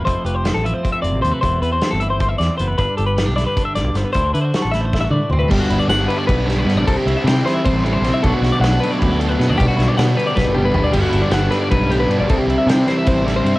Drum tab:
CC |-------|-------|-------|-------|
RD |-------|-------|-------|-------|
HH |xxxxxxx|xxxxxxx|xxxxxxx|xxxx---|
SD |--o----|--o--o-|--oo-oo|--ooo--|
T2 |-------|-------|-------|-----o-|
FT |-------|-------|-------|------o|
BD |o---o--|o---o--|o---o--|o---o--|

CC |x------|-------|-------|-------|
RD |-xxxxxx|xxxxxxx|xxxxxxx|xxxx---|
HH |-------|-------|-------|-------|
SD |--o--oo|--oo--o|-oo---o|-oo-o--|
T2 |-------|-------|-------|-----o-|
FT |-------|-------|-------|------o|
BD |o---o--|o---o--|o---o--|o---o--|

CC |x------|-------|
RD |xxxxxxx|xxxxxxx|
HH |-------|-------|
SD |--oo---|--oo-o-|
T2 |-------|-------|
FT |-------|-------|
BD |o---o--|o---o--|